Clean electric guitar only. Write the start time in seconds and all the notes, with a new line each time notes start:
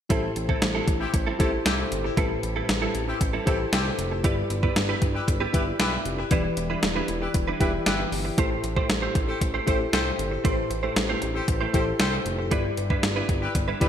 0.10 G3 C4 E4 A4
0.23 muted clean electric guitar stroke
0.36 muted clean electric guitar stroke
0.49 G3 C4 E4 A4
0.62 muted clean electric guitar stroke
0.75 G3 C4 E4 A4
0.88 muted clean electric guitar stroke
1.01 muted clean electric guitar stroke
1.14 muted clean electric guitar stroke
1.26 G3 C4 E4 A4
1.40 G3 C4 E4 A4
1.53 muted clean electric guitar stroke
1.66 muted clean electric guitar stroke
1.79 muted clean electric guitar stroke
2.04 muted clean electric guitar stroke
2.17 G3 C4 E4 A4
2.30 muted clean electric guitar stroke
2.43 muted clean electric guitar stroke
2.56 G3 C4 E4 A4
2.82 G3 C4 E4 A4
2.95 muted clean electric guitar stroke
3.08 muted clean electric guitar stroke
3.21 muted clean electric guitar stroke
3.33 G3 C4 E4 A4
3.46 G3 C4 E4 A4
3.59 muted clean electric guitar stroke
3.72 muted clean electric guitar stroke
3.85 muted clean electric guitar stroke
4.12 muted clean electric guitar stroke
4.24 B3 E4 G4 B4
4.37 muted clean electric guitar stroke
4.50 muted clean electric guitar stroke
4.63 B3 E4 G4 B4
4.89 B3 E4 G4 B4
5.02 muted clean electric guitar stroke
5.15 muted clean electric guitar stroke
5.28 muted clean electric guitar stroke
5.40 B3 E4 G4 B4
5.53 B3 E4 G4 B4
5.67 muted clean electric guitar stroke
5.80 muted clean electric guitar stroke
5.92 muted clean electric guitar stroke
6.19 muted clean electric guitar stroke
6.31 G3 D4 E4 B4
6.44 muted clean electric guitar stroke
6.57 muted clean electric guitar stroke
6.70 G3 D4 E4 B4
6.83 muted clean electric guitar stroke
6.96 G3 D4 E4 B4
7.09 muted clean electric guitar stroke
7.22 muted clean electric guitar stroke
7.35 muted clean electric guitar stroke
7.48 G3 D4 E4 B4
7.60 G3 D4 E4 B4
7.73 muted clean electric guitar stroke
7.86 muted clean electric guitar stroke
7.99 muted clean electric guitar stroke
8.25 muted clean electric guitar stroke
8.38 A3 E4 G4 C5
8.51 muted clean electric guitar stroke
8.64 muted clean electric guitar stroke
8.76 A3 E4 G4 C5
8.89 muted clean electric guitar stroke
9.02 A3 E4 G4 C5
9.15 muted clean electric guitar stroke
9.28 muted clean electric guitar stroke
9.41 muted clean electric guitar stroke
9.54 A3 E4 G4 C5
9.67 A3 E4 G4 C5
9.80 muted clean electric guitar stroke
9.93 muted clean electric guitar stroke
10.05 muted clean electric guitar stroke
10.31 muted clean electric guitar stroke
10.44 A3 E4 G4 C5
10.57 muted clean electric guitar stroke
10.70 muted clean electric guitar stroke
10.83 A3 E4 G4 C5
10.96 muted clean electric guitar stroke
11.09 A3 E4 G4 C5
11.22 muted clean electric guitar stroke
11.35 muted clean electric guitar stroke
11.48 muted clean electric guitar stroke
11.61 A3 E4 G4 C5
11.73 A3 E4 G4 C5
11.87 muted clean electric guitar stroke
12.00 muted clean electric guitar stroke
12.13 muted clean electric guitar stroke
12.39 muted clean electric guitar stroke
12.51 G3 D4 E4 B4
12.64 muted clean electric guitar stroke
12.77 muted clean electric guitar stroke
12.90 G3 D4 E4 B4
13.03 muted clean electric guitar stroke
13.16 G3 D4 E4 B4
13.29 muted clean electric guitar stroke
13.42 muted clean electric guitar stroke
13.55 muted clean electric guitar stroke
13.68 G3 D4 E4 B4
13.81 G3 D4 E4 B4